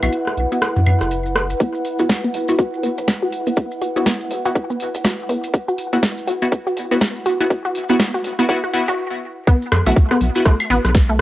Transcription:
Already playing: E4 B4 F#5
0.03 B1 B3 E4 F#4, closed hi-hat, high woodblock, maracas
0.12 closed hi-hat, maracas
0.27 cross-stick, maracas
0.37 B1, closed hi-hat
0.52 B3 E4 F#4, closed hi-hat, maracas
0.62 cross-stick, closed hi-hat, maracas
0.76 mid tom, maracas
0.87 closed hi-hat, mid tom, high woodblock
1.01 F#1, cross-stick, closed hi-hat, maracas
1.11 closed hi-hat, maracas
1.26 maracas
1.36 cross-stick
1.50 closed hi-hat, maracas
1.60 B3, kick, closed hi-hat, maracas
1.74 maracas
1.85 open hi-hat
1.99 B1 B3 E4 F#4, closed hi-hat, maracas
2.09 kick, snare, closed hi-hat, maracas
2.24 B3, maracas
2.34 B1, open hi-hat
2.48 B3 E4 F#4, open hi-hat, maracas
2.59 F#4, kick, closed hi-hat, maracas
2.74 maracas
2.83 A1 B3, open hi-hat
2.98 B1, closed hi-hat, maracas
3.08 kick, snare, closed hi-hat, maracas
3.22 F#4, maracas
3.32 open hi-hat
3.46 B1 B3, closed hi-hat, maracas
3.57 kick, closed hi-hat, maracas
3.71 maracas
3.82 F#4, open hi-hat
3.96 B1 B3 E4 F#4, closed hi-hat, maracas
4.06 B3, kick, snare, closed hi-hat, maracas
4.21 maracas
4.31 B1, open hi-hat
4.45 B3 E4 F#4, open hi-hat, maracas
4.55 kick, closed hi-hat, maracas
4.70 B3, maracas
4.80 open hi-hat
4.94 F#1, closed hi-hat, maracas
5.04 F#4, kick, snare, closed hi-hat, maracas
5.19 maracas
5.29 B1 B3, open hi-hat
5.44 closed hi-hat, maracas
5.54 kick, closed hi-hat, maracas
5.68 F#4, maracas
5.78 open hi-hat
5.93 B1 B3 E4 F#4, closed hi-hat, maracas
6.03 kick, snare, closed hi-hat, maracas
6.18 maracas
6.27 B1 F#4, open hi-hat
6.42 B3 E4 F#4, open hi-hat, maracas
6.52 B1, kick, closed hi-hat, maracas
6.67 F#4, maracas
6.77 A1, open hi-hat
6.91 B1 B3 E4 F#4, closed hi-hat, maracas
7.01 kick, snare, closed hi-hat, maracas
7.16 maracas
7.26 F#4, open hi-hat
7.40 B1 B3 E4 F#4, closed hi-hat, maracas
7.50 kick, closed hi-hat, maracas
7.65 F#4, maracas
7.75 open hi-hat
7.89 B1 B3 E4 F#4, closed hi-hat, maracas
8.00 kick, snare, closed hi-hat, maracas
8.14 F#4, maracas
8.24 B1, open hi-hat
8.39 B3 E4 F#4, open hi-hat, maracas
8.49 B3 E4 F#4, kick, closed hi-hat, maracas
8.63 F#4, maracas
8.73 B3 E4 F#4, open hi-hat
8.88 F#1 F#4, closed hi-hat, maracas
9.47 B3, kick, closed hi-hat, maracas
9.62 maracas
9.72 cross-stick, mid tom, open hi-hat, high woodblock
9.86 B1 A3 B3 E4 F#4, closed hi-hat, maracas
9.96 kick, closed hi-hat, maracas
10.11 B3, cross-stick, open hi-hat, maracas
10.21 B1, open hi-hat
10.35 B3 E4 F#4, closed hi-hat, maracas
10.45 B1 A3, kick, cross-stick, closed hi-hat, maracas
10.60 high woodblock, maracas
10.70 A1 B3, open hi-hat
10.85 B1, cross-stick, closed hi-hat, maracas
10.95 kick, snare, closed hi-hat, maracas
11.09 A3, maracas

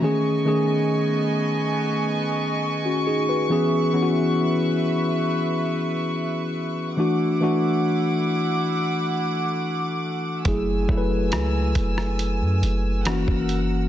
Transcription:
0.01 D#3 A3 B3 C#4 G#4 D#5 G#5 C#6
0.45 D#3 A3 C#4 G#4
2.85 C#4 F#4
3.07 D#4 G#4
3.29 F#4 B4
3.49 E3 B3 C#4 G#4 B4 E5
3.93 E3 B3 C#4 E4
4.02 F#4
6.97 E3 A3 D4 E4 F#4 F#5 D6
7.41 E3 A3 D4 F#4
10.45 F#1 F#3 A3 E4 G#4 G#5 E6, kick, closed hi-hat
10.88 F#1 F#3 A3 E4 A4, kick
10.98 B4
11.32 C#2, cross-stick, closed hi-hat
11.75 F#1, kick, closed hi-hat
11.98 cross-stick
12.19 closed hi-hat
12.41 F#2
12.62 F#1, closed hi-hat
13.05 E3 A#3 C#4 F#4 A#4 F#5 E6, cross-stick, closed hi-hat
13.28 F#1, kick
13.49 closed hi-hat

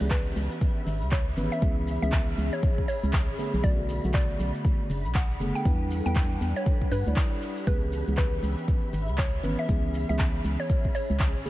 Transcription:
Already playing: C#4 G#4 E5 B5
0.00 C#2 E3 B3 C#4 G#4, closed hi-hat, shaker
0.10 B4, kick, clap, closed hi-hat, shaker
0.27 shaker
0.36 C#2, open hi-hat, shaker
0.51 closed hi-hat, shaker
0.61 kick, closed hi-hat, shaker
0.87 G#1, open hi-hat, shaker
1.02 C#2, closed hi-hat, shaker
1.11 C#5, kick, clap, closed hi-hat, shaker
1.36 G#1 E3 B3 C#4 B4, open hi-hat, shaker
1.52 E5, closed hi-hat, shaker
1.62 C#2 E3 B3 C#4 G#4, kick, closed hi-hat, shaker
1.87 open hi-hat, shaker
2.01 C#2 E3 B3 C#4 G#4 E5, closed hi-hat, shaker
2.12 kick, clap, closed hi-hat, shaker
2.28 shaker
2.38 C#2, open hi-hat, shaker
2.53 C#5, closed hi-hat, shaker
2.63 kick, closed hi-hat, shaker
2.78 kick
2.88 C#5, open hi-hat, shaker
3.03 C#2, closed hi-hat, shaker
3.13 kick, clap, closed hi-hat, shaker
3.29 G#1
3.38 D3 A3 B3 D4 G#4, open hi-hat, shaker
3.54 B1, closed hi-hat, shaker
3.63 B1 D3 A3 B3 F#4 D5, kick, closed hi-hat, shaker
3.84 A4
3.89 open hi-hat, shaker
4.03 B1 D3 A3 B3 F#4, closed hi-hat, shaker
4.14 D5, kick, clap, closed hi-hat, shaker
4.30 shaker
4.39 B1 F#5, open hi-hat, shaker
4.55 closed hi-hat, shaker
4.65 kick, closed hi-hat, shaker
4.90 F#1, open hi-hat, shaker
5.05 B1, closed hi-hat, shaker
5.15 F#5, kick, clap, closed hi-hat, shaker
5.40 F#1 D3 A3 B3 G#4, open hi-hat, shaker
5.55 G5, closed hi-hat, shaker
5.65 E2 G3 D4 E4 B4, kick, closed hi-hat, shaker
5.87 G4
5.91 open hi-hat, shaker
6.05 E2 G3 D4 E4 B4 G5, closed hi-hat, shaker
6.15 kick, clap, closed hi-hat, shaker
6.32 shaker
6.41 E2, open hi-hat, shaker
6.56 C#5 E5, closed hi-hat, shaker
6.66 kick, closed hi-hat, shaker
6.81 kick
6.91 G2 B4, open hi-hat, shaker
7.06 D2 G3 D4 E4 D5, closed hi-hat, shaker
7.16 kick, clap, closed hi-hat, shaker
7.42 open hi-hat, shaker
7.57 closed hi-hat, shaker
7.67 C#2 E3 B3 C#4 G#4 B4, kick, closed hi-hat, shaker
7.88 G#4, open hi-hat
7.93 shaker
8.07 C#2 E3 B3 C#4 G#4, closed hi-hat, shaker
8.17 B4, kick, clap, closed hi-hat, shaker
8.33 shaker
8.43 C#2, open hi-hat, shaker
8.58 closed hi-hat, shaker
8.68 kick, closed hi-hat, shaker
8.93 G#1, open hi-hat, shaker
9.08 C#2, closed hi-hat, shaker
9.18 C#5, kick, clap, closed hi-hat, shaker
9.43 G#1 E3 B3 C#4 B4, open hi-hat, shaker
9.59 E5, closed hi-hat, shaker
9.68 C#2 E3 B3 C#4 G#4, kick, closed hi-hat, shaker
9.94 open hi-hat, shaker
10.08 C#2 E3 B3 C#4 G#4 E5, closed hi-hat, shaker
10.19 kick, clap, closed hi-hat, shaker
10.35 shaker
10.44 C#2, open hi-hat, shaker
10.60 C#5, closed hi-hat, shaker
10.70 kick, closed hi-hat, shaker
10.85 kick
10.95 C#5, open hi-hat, shaker
11.10 C#2, closed hi-hat, shaker
11.20 kick, clap, closed hi-hat, shaker
11.35 G#1
11.45 D3 A3 B3 G#4, open hi-hat, shaker

